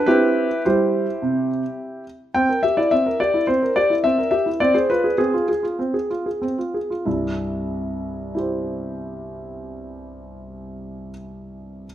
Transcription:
0.06 C4 E4 G4 B4
0.65 G3 E4 G4 C5
1.22 C3
2.34 C4 G5
2.49 A#4
2.63 G4 E5
2.77 E4 D5
2.91 C4 E5
3.06 A#4
3.20 G4 D5
3.34 E4
3.47 C4 C5
3.63 A#4
3.76 G4 D5
3.90 E4
4.04 C4 E5
4.18 A#4
4.31 G4 E5
4.46 E4
4.60 C4 D5
4.74 G#4 C5
4.90 F4 B4
5.04 G#4
5.18 C4 G#4
5.34 F4
5.49 G#4
5.63 F4
5.79 C4
5.94 G#4
6.10 F4
6.26 G#4
6.42 C4
6.58 F4
6.74 G#4
6.90 F4
7.06 C2 G2 E4
8.35 E4 G4
8.39 C5

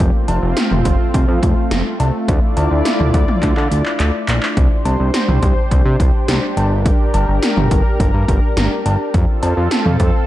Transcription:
0.00 F1 A3 C4 F4, kick, closed hi-hat
0.28 F1, closed hi-hat, cowbell
0.43 F1
0.57 snare, closed hi-hat
0.71 F1, mid tom
0.85 F1, kick, closed hi-hat
1.14 F1, kick, closed hi-hat
1.28 F2
1.43 F1, kick, closed hi-hat
1.71 F1, snare, closed hi-hat
2.00 C2, closed hi-hat, cowbell
2.28 D2 D4 E4 F4 D5, kick, closed hi-hat
2.57 D2, closed hi-hat, cowbell
2.71 D2
2.85 snare, closed hi-hat
3.00 D2, mid tom
3.14 D2, kick, closed hi-hat
3.28 mid tom
3.43 D2, kick, clap, closed hi-hat
3.57 D3, clap
3.71 D2, closed hi-hat
3.86 clap
4.00 D2, clap, closed hi-hat
4.28 A#1, clap, closed hi-hat
4.43 clap
4.57 C2 G4 C5, kick, closed hi-hat
4.85 C2, closed hi-hat, cowbell
5.00 C2
5.14 snare, closed hi-hat
5.28 C2, mid tom
5.43 C2, kick, closed hi-hat
5.71 C2, kick, closed hi-hat
5.85 C3
6.00 C2, kick, closed hi-hat
6.28 C2, snare, closed hi-hat
6.57 G1 A#4, closed hi-hat, cowbell
6.86 kick, closed hi-hat
7.14 G1, closed hi-hat, cowbell
7.28 G1
7.43 snare, closed hi-hat
7.57 G1, mid tom
7.71 G1, kick, closed hi-hat
8.00 G1, kick, closed hi-hat
8.14 G2
8.28 G1, kick, closed hi-hat
8.57 G1, snare, closed hi-hat
8.86 G1, closed hi-hat, cowbell
9.14 F2 C4 F4 A4, kick, closed hi-hat
9.43 F2, closed hi-hat, cowbell
9.57 F2
9.71 snare, closed hi-hat
9.86 F2, mid tom
10.00 F2, kick, closed hi-hat

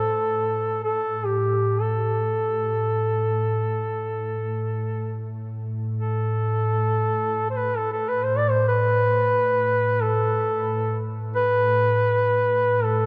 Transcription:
Already playing: A2 A4
0.84 A4
1.26 G4
1.82 A4
2.87 A2
5.97 A4
7.50 C5
7.56 B4
7.77 A4
7.93 A4
8.09 B4
8.23 C5
8.37 D5
8.50 C5
8.68 B4
10.02 A4
11.35 B4
12.84 A4

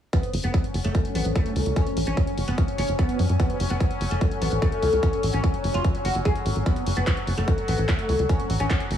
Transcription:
0.13 F#3 B3 C#4, kick, closed hi-hat
0.23 closed hi-hat
0.34 F#1, open hi-hat
0.44 F#1 B3, closed hi-hat
0.54 kick, closed hi-hat
0.64 closed hi-hat
0.74 F#1, open hi-hat
0.84 F#1 A3, closed hi-hat
0.95 kick, closed hi-hat
1.05 closed hi-hat
1.15 A1 B3, open hi-hat
1.25 A1, closed hi-hat
1.35 A3, kick, closed hi-hat
1.46 closed hi-hat
1.56 C#2, open hi-hat
1.66 C#2, closed hi-hat
1.76 C#4, kick, closed hi-hat
1.87 closed hi-hat
1.97 A1, open hi-hat
2.07 A1 C#4, closed hi-hat
2.17 kick, closed hi-hat
2.27 closed hi-hat
2.38 F#1, open hi-hat
2.48 F#1 B3, closed hi-hat
2.58 kick, closed hi-hat
2.68 closed hi-hat
2.78 F#1 C#4, open hi-hat
2.89 F#1, closed hi-hat
2.99 B3, kick, closed hi-hat
3.09 closed hi-hat
3.19 F#2, open hi-hat
3.29 F#2, closed hi-hat
3.40 B3, kick, closed hi-hat
3.50 closed hi-hat
3.60 F#1, open hi-hat
3.70 F#1 B3, closed hi-hat
3.80 kick, closed hi-hat
3.91 closed hi-hat
4.01 F#1, open hi-hat
4.11 F#1 A3, closed hi-hat
4.21 kick, closed hi-hat
4.31 closed hi-hat
4.42 A1 B3, open hi-hat
4.52 A1, closed hi-hat
4.62 A3, kick, closed hi-hat
4.72 closed hi-hat
4.82 C#2, open hi-hat
4.93 C#2, closed hi-hat
5.03 C#4, kick, closed hi-hat
5.13 closed hi-hat
5.23 A1, open hi-hat
5.33 A1 C#4, closed hi-hat
5.44 kick, closed hi-hat
5.54 closed hi-hat
5.64 F#1, open hi-hat
5.74 F#1 F4, closed hi-hat
5.84 kick, closed hi-hat
5.95 closed hi-hat
6.05 F#1 F#4, open hi-hat
6.15 F#1, closed hi-hat
6.25 G#4, kick, closed hi-hat
6.36 closed hi-hat
6.46 G#1, open hi-hat
6.56 G#1, closed hi-hat
6.66 B3 F#4, kick, closed hi-hat
6.76 closed hi-hat
6.87 F#1, open hi-hat
6.97 F#1 B3, closed hi-hat
7.07 kick, clap, closed hi-hat
7.17 closed hi-hat
7.27 F#1, open hi-hat
7.38 F#1 A3, closed hi-hat
7.48 kick, closed hi-hat
7.58 closed hi-hat
7.68 A1 B3, open hi-hat
7.78 A1, closed hi-hat
7.89 A3, kick, clap, closed hi-hat
7.99 closed hi-hat
8.09 C#2, open hi-hat
8.19 C#2, closed hi-hat
8.29 C#4, kick, closed hi-hat
8.40 closed hi-hat
8.50 A1, open hi-hat
8.60 A1 C#4, closed hi-hat
8.70 kick, clap, closed hi-hat
8.80 closed hi-hat
8.91 F#1, open hi-hat

